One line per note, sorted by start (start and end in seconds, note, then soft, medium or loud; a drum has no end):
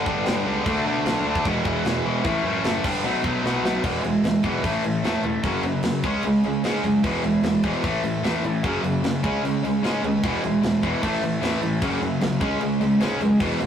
0.00 0.64 G2 loud
0.00 0.23 G2 loud
0.00 0.63 D3 loud
0.00 0.65 G3 medium
0.04 0.19 G1 medium
0.04 0.24 D3 loud
0.04 0.24 G3 loud
0.04 0.24 B3 loud
0.04 0.25 D4 loud
0.04 kick loud
0.24 0.40 G1 medium
0.24 0.44 G2 medium
0.24 0.44 D3 medium
0.24 0.45 G3 loud
0.24 0.45 B3 loud
0.24 0.45 D4 medium
0.24 snare loud
0.24 crash medium
0.45 0.60 C#2 medium
0.45 0.64 G2 medium
0.45 0.63 D3 medium
0.45 0.65 G3 loud
0.45 0.64 B3 medium
0.45 0.65 D4 medium
0.64 0.79 D2 loud
0.64 0.84 D3 loud
0.64 0.85 F#3 loud
0.64 0.85 A3 loud
0.64 0.85 D4 loud
0.64 kick loud
0.64 crash medium
0.85 0.99 B2 medium
0.85 1.05 D3 medium
0.85 1.06 F#3 medium
0.85 1.06 A3 medium
0.85 1.06 D4 loud
1.06 1.19 B1 loud
1.06 1.25 D3 loud
1.06 1.26 F#3 loud
1.06 1.26 A3 loud
1.06 1.27 D4 loud
1.06 snare loud
1.06 crash medium
1.25 1.38 D2 loud
1.25 1.45 D3 medium
1.25 1.45 F#3 medium
1.25 1.45 A3 loud
1.25 1.46 D4 loud
1.35 kick medium
1.45 1.59 E1 loud
1.45 1.64 E2 loud
1.45 1.65 B2 loud
1.45 1.65 E3 medium
1.45 1.65 G#3 medium
1.45 1.66 B3 medium
1.45 1.67 E4 loud
1.45 kick loud
1.45 crash medium
1.65 1.79 E1 medium
1.65 1.84 E2 medium
1.65 1.85 B2 loud
1.65 1.86 E3 loud
1.65 1.86 G#3 medium
1.65 1.87 B3 loud
1.65 1.87 E4 loud
1.65 kick loud
1.85 1.98 E1 loud
1.85 2.04 E2 medium
1.85 2.04 B2 medium
1.85 2.04 E3 loud
1.85 2.06 G#3 medium
1.85 2.06 B3 medium
1.85 2.06 E4 medium
1.85 snare loud
1.85 crash medium
2.05 2.19 E1 medium
2.05 2.24 E2 medium
2.05 2.24 B2 loud
2.05 2.24 E3 loud
2.05 2.25 G#3 medium
2.05 2.25 B3 medium
2.05 2.25 E4 loud
2.24 2.38 A1 loud
2.24 2.44 A2 loud
2.24 2.44 E3 medium
2.24 2.45 A3 loud
2.24 2.45 C#4 loud
2.24 2.46 E4 loud
2.24 kick loud
2.24 crash medium
2.43 2.57 F#2 medium
2.43 2.62 A2 medium
2.43 2.63 E3 medium
2.43 2.64 A3 loud
2.43 2.64 C#4 medium
2.47 2.65 E4 medium
2.63 2.77 F#1 medium
2.63 2.83 A2 medium
2.63 2.83 E3 loud
2.63 2.84 A3 loud
2.63 2.84 C#4 loud
2.63 2.84 E4 loud
2.63 snare loud
2.63 crash medium
2.84 2.98 G1 medium
2.84 3.03 G2 medium
2.84 3.03 D3 loud
2.84 3.03 G3 loud
2.84 3.04 B3 loud
2.84 3.04 D4 loud
2.84 kick loud
2.84 crash loud
3.03 3.17 B1 medium
3.03 3.22 B2 loud
3.03 3.22 F#3 medium
3.03 3.23 A3 loud
3.03 3.22 B3 loud
3.03 3.23 D#4 loud
3.03 crash medium
3.23 3.38 B1 medium
3.23 3.42 B2 medium
3.23 3.43 F#3 loud
3.23 3.43 A3 loud
3.23 3.44 B3 loud
3.23 3.44 D#4 loud
3.23 kick medium
3.43 3.57 B1 medium
3.43 3.61 B2 medium
3.43 3.61 F#3 medium
3.43 3.61 A3 medium
3.43 3.64 B3 loud
3.43 3.62 D#4 loud
3.43 snare medium
3.62 3.77 B1 loud
3.62 3.82 B2 loud
3.62 3.82 F#3 medium
3.62 3.82 A3 loud
3.62 3.84 B3 loud
3.62 3.83 D#4 loud
3.62 snare loud
3.83 3.96 E1 medium
3.83 4.02 E2 medium
3.83 4.02 B2 medium
3.83 4.02 E3 medium
3.83 4.02 G#3 medium
3.83 4.03 B3 medium
3.83 kick loud
3.83 crash medium
3.87 4.42 E3 loud
4.03 4.16 E1 medium
4.03 4.22 E2 medium
4.03 4.22 B2 medium
4.03 4.22 E3 medium
4.03 4.22 G#3 medium
4.03 crash medium
4.23 4.35 E1 medium
4.23 4.42 E2 medium
4.23 4.42 B2 medium
4.23 4.42 E3 medium
4.23 4.42 G#3 medium
4.23 snare loud
4.23 crash medium
4.43 4.64 B1 medium
4.43 4.63 E2 medium
4.43 4.63 B2 medium
4.43 4.62 E3 medium
4.43 4.63 G#3 medium
4.43 4.63 B3 loud
4.43 kick medium
4.43 crash medium
4.63 4.76 A1 medium
4.63 4.82 A2 medium
4.63 4.82 E3 medium
4.63 4.83 A3 medium
4.63 kick loud
4.63 crash medium
4.83 4.96 A1 medium
4.83 5.02 A2 medium
4.83 5.02 E3 medium
4.83 crash medium
5.03 5.16 E2 medium
5.03 5.22 A2 medium
5.03 5.23 E3 medium
5.03 5.23 A3 medium
5.03 snare loud
5.03 crash medium
5.23 5.36 E1 medium
5.23 5.42 A2 medium
5.23 5.42 E3 medium
5.23 5.42 A3 medium
5.23 crash soft
5.43 5.56 F#1 medium
5.43 5.63 F#2 medium
5.43 5.63 C#3 medium
5.43 5.62 F#3 medium
5.43 5.62 A#3 medium
5.43 5.63 C#4 medium
5.43 kick loud
5.43 crash medium
5.63 5.76 F#1 medium
5.63 5.82 F#2 medium
5.63 5.83 C#3 medium
5.63 5.81 F#3 medium
5.63 5.82 A#3 medium
5.63 crash medium
5.83 5.96 F#1 loud
5.83 6.02 F#2 medium
5.83 6.02 C#3 medium
5.83 6.02 F#3 medium
5.83 6.02 A#3 medium
5.83 snare loud
5.83 crash medium
6.03 6.16 C#2 medium
6.03 6.23 C#3 medium
6.03 6.23 G#3 loud
6.03 6.24 C#4 loud
6.03 kick loud
6.03 crash medium
6.23 6.36 C#2 medium
6.23 6.43 C#3 medium
6.23 6.43 G#3 medium
6.23 crash medium
6.43 6.55 C#2 medium
6.43 6.62 C#3 medium
6.43 6.62 G#3 medium
6.43 crash medium
6.63 6.75 G#2 medium
6.63 6.82 C#3 medium
6.63 6.83 G#3 medium
6.63 6.84 C#4 loud
6.63 snare loud
6.63 crash medium
6.83 6.96 F#2 loud
6.83 7.02 C#3 medium
6.83 7.02 G#3 medium
6.83 crash medium
7.03 7.16 E1 loud
7.03 7.23 E2 medium
7.03 7.23 B2 medium
7.03 7.22 E3 medium
7.03 7.22 G#3 loud
7.03 7.23 B3 medium
7.03 kick loud
7.03 crash medium
7.23 7.35 E1 medium
7.23 7.42 E2 medium
7.23 7.42 B2 medium
7.23 7.42 E3 medium
7.23 7.41 G#3 medium
7.23 crash medium
7.43 7.55 E1 loud
7.43 7.62 E2 medium
7.43 7.62 B2 loud
7.43 7.62 E3 medium
7.43 7.62 G#3 medium
7.43 snare loud
7.43 crash medium
7.63 7.76 E1 medium
7.63 7.83 E2 medium
7.63 7.83 B2 medium
7.63 7.82 E3 medium
7.63 7.82 G#3 medium
7.63 7.83 B3 loud
7.63 kick loud
7.63 crash medium
7.83 7.96 A1 medium
7.83 8.02 A2 medium
7.83 8.02 E3 medium
7.83 8.03 A3 medium
7.83 kick loud
7.83 crash medium
8.02 8.15 A1 medium
8.02 8.22 A2 medium
8.02 8.22 E3 medium
8.02 crash medium
8.22 8.34 E2 medium
8.22 8.42 A2 loud
8.22 8.42 E3 loud
8.22 8.43 A3 loud
8.22 snare loud
8.22 crash medium
8.41 8.54 A1 medium
8.41 8.62 A2 medium
8.41 8.62 E3 medium
8.41 8.62 A3 medium
8.41 crash medium
8.63 8.76 F#1 loud
8.63 8.82 F#2 medium
8.63 8.82 C#3 medium
8.63 8.82 F#3 medium
8.63 8.82 A#3 medium
8.63 8.83 C#4 medium
8.63 kick loud
8.63 crash medium
8.82 8.94 F#1 medium
8.82 9.01 F#2 medium
8.82 9.01 C#3 medium
8.82 9.01 F#3 medium
8.82 9.01 A#3 medium
8.82 crash medium
9.03 9.15 F#1 medium
9.03 9.21 F#2 medium
9.03 9.21 C#3 medium
9.03 9.21 F#3 medium
9.03 9.22 A#3 medium
9.03 snare loud
9.03 crash medium
9.24 9.36 C#2 medium
9.24 9.42 C#3 medium
9.24 9.43 G#3 loud
9.24 9.43 C#4 loud
9.24 kick loud
9.24 crash medium
9.42 9.54 C#2 medium
9.42 9.62 C#3 medium
9.42 9.62 G#3 medium
9.42 crash medium
9.63 9.75 C#2 medium
9.63 9.81 C#3 medium
9.63 9.81 G#3 medium
9.63 crash medium
9.83 9.95 G#2 medium
9.83 10.02 C#3 medium
9.83 10.03 G#3 medium
9.83 10.03 C#4 loud
9.83 snare loud
9.83 crash medium
10.02 10.14 D#2 medium
10.02 10.21 C#3 medium
10.02 10.22 G#3 medium
10.02 crash medium
10.23 10.35 E1 loud
10.23 10.42 E2 medium
10.23 10.42 B2 medium
10.23 10.42 E3 medium
10.23 10.42 G#3 medium
10.23 10.43 B3 medium
10.23 kick loud
10.23 crash medium
10.43 10.55 E1 medium
10.43 10.60 E2 medium
10.43 10.60 B2 medium
10.43 10.61 E3 medium
10.43 10.62 G#3 medium
10.43 crash medium
10.62 10.74 E1 medium
10.62 10.80 E2 medium
10.62 10.80 B2 medium
10.62 10.80 E3 medium
10.62 10.81 G#3 medium
10.62 snare loud
10.62 crash medium
10.82 10.95 E1 medium
10.82 11.01 E2 medium
10.82 11.01 B2 loud
10.82 11.01 E3 loud
10.82 11.01 G#3 medium
10.82 11.02 B3 medium
10.82 kick medium
10.82 crash medium
11.03 11.15 A1 medium
11.03 11.21 A2 medium
11.03 11.21 E3 medium
11.03 11.22 A3 medium
11.03 kick loud
11.03 crash medium
11.21 11.33 A1 medium
11.21 11.40 A2 medium
11.21 11.40 E3 medium
11.21 crash medium
11.41 11.53 E2 medium
11.41 11.61 A2 medium
11.41 11.61 E3 loud
11.41 11.61 A3 medium
11.41 snare loud
11.41 crash medium
11.62 11.74 A1 medium
11.62 11.80 A2 medium
11.62 11.80 E3 medium
11.62 11.80 A3 medium
11.62 crash medium
11.81 11.94 F#1 medium
11.81 12.00 F#2 medium
11.81 12.00 C#3 medium
11.81 12.00 F#3 medium
11.81 12.00 A#3 loud
11.81 12.00 C#4 medium
11.81 kick loud
11.81 crash medium
12.01 12.14 F#1 medium
12.01 12.19 F#2 medium
12.01 12.19 C#3 medium
12.01 12.19 F#3 medium
12.01 12.20 A#3 medium
12.01 crash medium
12.21 12.41 C2 medium
12.21 12.39 F#2 medium
12.21 12.39 C#3 medium
12.21 12.39 F#3 medium
12.21 12.40 A#3 medium
12.21 snare loud
12.21 crash medium
12.41 12.53 C#2 medium
12.41 12.59 C#3 medium
12.41 12.59 G#3 medium
12.41 12.60 C#4 loud
12.41 kick loud
12.41 crash medium
12.60 12.72 C#2 medium
12.60 12.79 C#3 medium
12.60 12.79 G#3 medium
12.60 crash medium
12.80 12.92 C#2 medium
12.80 12.99 C#3 medium
12.80 12.99 G#3 medium
12.80 crash medium
13.00 13.13 G#2 medium
13.00 13.19 C#3 medium
13.00 13.20 G#3 medium
13.00 13.20 C#4 loud
13.00 snare loud
13.00 crash medium
13.20 13.32 F#2 medium
13.20 13.38 C#3 medium
13.20 13.38 G#3 medium
13.20 crash medium
13.40 13.52 E1 medium
13.40 13.59 E2 medium
13.40 13.59 B2 medium
13.40 13.59 E3 medium
13.40 13.59 G#3 medium
13.40 13.59 B3 loud
13.40 kick loud
13.40 crash medium
13.60 13.66 E1 medium
13.60 13.66 E2 medium
13.60 13.66 B2 medium
13.60 13.66 E3 medium
13.60 13.66 G#3 medium
13.60 crash medium